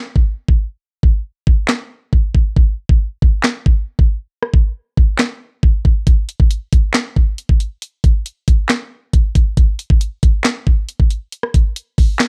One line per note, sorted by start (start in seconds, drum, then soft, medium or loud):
0.16 kick loud
0.48 kick medium
1.03 kick loud
1.47 kick medium
1.68 snare loud
1.68 clap medium
2.13 kick medium
2.35 kick medium
2.56 kick loud
2.89 kick medium
3.22 kick loud
3.44 snare loud
3.44 clap medium
3.66 kick loud
3.99 kick medium
4.43 cross-stick medium
4.54 kick medium
4.97 kick medium
5.19 snare loud
5.19 clap medium
5.63 kick medium
5.85 kick medium
6.07 kick loud
6.07 closed hi-hat medium
6.29 closed hi-hat medium
6.40 kick loud
6.51 closed hi-hat medium
6.73 kick medium
6.73 closed hi-hat medium
6.94 snare loud
6.94 clap medium
6.94 closed hi-hat medium
7.16 kick loud
7.38 closed hi-hat medium
7.49 kick medium
7.60 closed hi-hat medium
7.82 closed hi-hat medium
8.04 kick loud
8.04 closed hi-hat medium
8.26 closed hi-hat medium
8.48 kick medium
8.48 closed hi-hat medium
8.69 snare loud
8.69 clap medium
8.69 closed hi-hat medium
9.13 kick loud
9.13 closed hi-hat medium
9.35 kick medium
9.35 closed hi-hat medium
9.57 kick loud
9.57 closed hi-hat medium
9.79 closed hi-hat medium
9.90 kick loud
10.01 closed hi-hat medium
10.23 kick loud
10.23 closed hi-hat medium
10.44 snare loud
10.44 clap medium
10.44 closed hi-hat medium
10.67 kick loud
10.89 closed hi-hat medium
11.00 kick medium
11.10 closed hi-hat medium
11.32 closed hi-hat medium
11.43 cross-stick medium
11.54 kick loud
11.54 closed hi-hat medium
11.76 closed hi-hat medium
11.98 kick medium
11.98 open hi-hat medium
12.19 snare loud
12.19 clap medium
12.19 closed hi-hat medium